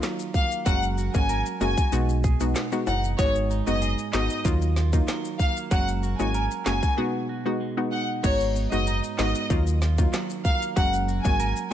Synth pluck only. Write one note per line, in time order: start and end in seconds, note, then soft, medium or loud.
0.66 1.10 G#3 loud
0.66 1.10 A#3 medium
0.66 1.10 C#4 medium
0.66 1.11 F#4 loud
1.14 1.34 G#3 medium
1.14 1.34 A#3 medium
1.14 1.34 C#4 medium
1.14 1.34 F#4 medium
1.61 1.82 G#3 medium
1.61 1.82 A#3 medium
1.61 1.82 C#4 medium
1.61 1.82 F#4 medium
1.92 2.37 G#3 loud
1.92 2.37 B3 medium
1.92 2.37 D#4 medium
1.92 2.37 F#4 loud
2.40 2.60 G#3 medium
2.40 2.60 B3 medium
2.40 2.61 D#4 medium
2.40 2.61 F#4 medium
2.72 2.92 G#3 medium
2.72 2.92 B3 medium
2.72 2.92 D#4 medium
2.72 2.92 F#4 medium
3.19 3.63 G#3 medium
3.19 3.63 B3 medium
3.19 3.63 D#4 medium
3.19 3.63 F#4 loud
3.67 4.10 G#3 medium
3.67 4.10 B3 medium
3.67 4.10 D#4 medium
3.67 4.10 F#4 medium
4.13 4.42 G#3 medium
4.13 4.43 B3 medium
4.13 4.43 D#4 medium
4.13 4.43 F#4 medium
4.45 4.66 F#3 loud
4.45 4.66 A#3 medium
4.45 4.66 D#4 medium
4.45 4.66 F4 loud
4.93 5.13 F#3 medium
4.93 5.13 A#3 medium
4.93 5.13 D#4 medium
4.93 5.13 F4 medium
5.71 6.15 G#3 medium
5.71 6.16 A#3 medium
5.71 6.16 C#4 medium
5.71 6.16 F#4 loud
6.19 6.39 G#3 medium
6.19 6.39 A#3 medium
6.19 6.39 C#4 medium
6.19 6.40 F#4 medium
6.66 6.87 G#3 medium
6.66 6.87 A#3 medium
6.66 6.87 C#4 medium
6.66 6.87 F#4 medium
6.97 7.42 G#3 loud
6.97 7.42 B3 medium
6.97 7.42 D#4 medium
6.97 7.42 F#4 loud
7.45 7.66 G#3 medium
7.45 7.66 B3 medium
7.45 7.66 D#4 medium
7.45 7.66 F#4 medium
7.77 7.97 G#3 medium
7.77 7.97 B3 medium
7.77 7.97 D#4 medium
7.77 7.97 F#4 medium
8.23 8.68 G#3 medium
8.23 8.68 B3 medium
8.23 8.68 D#4 medium
8.23 8.68 F#4 loud
8.72 9.15 G#3 medium
8.72 9.15 B3 medium
8.72 9.15 D#4 medium
8.72 9.15 F#4 medium
9.18 9.48 G#3 medium
9.18 9.48 B3 medium
9.18 9.48 D#4 medium
9.18 9.48 F#4 medium
9.50 9.71 F#3 loud
9.50 9.71 A#3 medium
9.50 9.71 D#4 medium
9.50 9.72 F4 loud
9.98 10.18 F#3 medium
9.98 10.18 A#3 medium
9.98 10.19 D#4 medium
9.98 10.19 F4 medium
10.76 11.21 G#3 loud
10.76 11.21 A#3 medium
10.76 11.21 C#4 medium
10.76 11.21 F#4 loud
11.24 11.45 G#3 medium
11.24 11.45 A#3 medium
11.24 11.45 C#4 medium
11.24 11.45 F#4 medium